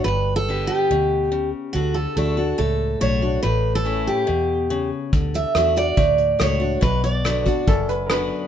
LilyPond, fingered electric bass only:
\new Staff \with { instrumentName = "Fingered electric bass" } { \clef bass \time 4/4 \key d \major \tempo 4 = 142 g,,2 d,2 | d,4 d,4 cis,4 b,,4 | a,,2 e,2 | d,4 e,4 d,4 cis,4 |
b,,2 fis,,2 | }